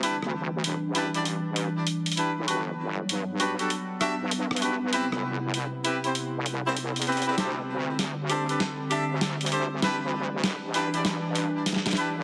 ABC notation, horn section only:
X:1
M:4/4
L:1/16
Q:"Swing 16ths" 1/4=98
K:Em
V:1 name="Horn section"
[DEGB] z4 z [DEGB] [DEGd] z6 [DEGB] z | [DFGB] z4 z [DFGB] [DFGA] z2 [DFGe] z3 [DFGB] z | [CEGB] z4 z [CEGB] [CEGc] z3 [CEGc] z2 [CEGB] [CEGB] | [DGAc] z4 z [DGAc] [DGAB] z2 [DGAe] z3 [DGAc] z |
[DEGB] z4 z [DEGB] [DEGd] z6 [DEGB] z |]